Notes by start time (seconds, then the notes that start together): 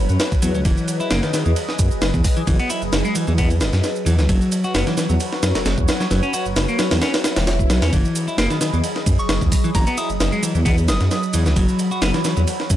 Already playing: F#3 F#4 B4 C#5
0.09 F#2, shaker
0.20 snare, ride, shaker
0.32 kick, shaker
0.42 E2 F#3, ride, shaker
0.55 C#2 F#3, shaker
0.65 F#1 E3 G#4 D#5, kick, ride, shaker
0.77 shaker
0.88 ride, shaker
1.00 E4, shaker
1.11 F#1 A#3, snare, ride, shaker
1.23 D#3, snare, shaker
1.33 D#3, snare, ride, shaker
1.46 E2 E3, shaker
1.56 ride, shaker
1.69 snare
1.79 F#2, kick, ride, shaker
1.91 F#1, shaker
2.01 F#1, snare, ride, shaker
2.14 E2, kick, shaker
2.24 kick, open hi-hat, shaker
2.37 E3, shaker
2.47 F#1 E3, kick, ride, shaker
2.59 B3, ride, shaker
2.70 E4, ride, shaker
2.82 F#1, shaker
2.92 F#1, snare, ride, shaker
3.05 G#3, shaker
3.15 E3, ride, shaker
3.27 E2 E3, shaker
3.38 B3, kick, ride, shaker
3.50 ride, shaker
3.61 F#1, snare, ride, shaker
3.73 F#2, snare, shaker
3.83 snare, ride, shaker
3.96 shaker
4.06 E2 E3, ride, shaker
4.19 C#2 E3, snare, shaker
4.28 F#1 F#3 F#4 B4 C#5, kick, ride, shaker
4.41 shaker
4.52 ride, shaker
4.64 F#4, shaker
4.74 F#1 B3, snare, ride, shaker
4.87 E3, snare, shaker
4.97 E3, snare, ride, shaker
5.09 E2 F#3, shaker
5.20 ride, shaker
5.33 snare
5.43 F#2, snare, ride, shaker
5.55 F#1, snare, ride, shaker
5.65 F#1, snare, ride, shaker
5.77 E2, kick, shaker
5.88 snare, ride, shaker
6.00 F#3, snare, shaker
6.11 F#1 F#3, snare, ride, shaker
6.23 C#4, shaker
6.33 F#4, ride, shaker
6.45 F#1, shaker
6.56 F#1, snare, ride, shaker
6.68 A#3, shaker
6.79 F#3, snare, ride, shaker
6.91 E2 F#3, snare, ride, shaker
7.01 C#4, snare, ride, swell, shaker
7.14 snare, ride, shaker
7.24 snare, ride, shaker
7.36 E1, snare, ride, shaker
7.47 snare, ride, shaker
7.59 kick, shaker
7.70 B1 F#3, snare, ride, shaker
7.82 E2 C#4, snare, ride, shaker
7.92 F#1 E3 F#3 G#4 D#5 B5, kick, ride, shaker
8.05 shaker
8.15 ride, shaker
8.28 E4, shaker
8.38 F#1 A#3, snare, ride, shaker
8.50 D#3, snare, shaker
8.61 D#3, snare, ride, shaker
8.73 E2 E3, shaker
8.84 ride, shaker
8.96 snare
9.06 F#2, kick, ride, shaker
9.19 F#1 C#6, shaker
9.29 F#1 C#6, snare, ride, shaker
9.41 E2, kick, shaker
9.52 kick, open hi-hat, shaker
9.64 E3, shaker
9.75 F#1 E3 A#5, kick, ride, shaker
9.87 B3 A#5, ride, shaker
9.97 E4 D#6, ride, shaker
10.10 F#1, shaker
10.20 F#1, snare, ride, shaker
10.32 G#3, shaker
10.43 E3, ride, shaker
10.55 E2 E3, shaker
10.65 B3, kick, ride, shaker
10.78 ride, shaker
10.88 F#1 D#6, snare, ride, shaker
11.00 F#2, snare, shaker
11.11 snare, ride, shaker
11.23 shaker
11.33 E2 E3, ride, shaker
11.46 C#2 E3, snare, shaker
11.56 F#1 F#3 F#4 C#5, kick, ride, shaker
11.68 shaker
11.79 ride, shaker
11.91 F#4, shaker
12.02 F#1 B3, snare, ride, shaker
12.14 E3, snare, shaker
12.24 E3, snare, ride, shaker
12.37 E2 F#3, shaker
12.47 ride, shaker
12.60 snare
12.70 F#2, kick, ride, shaker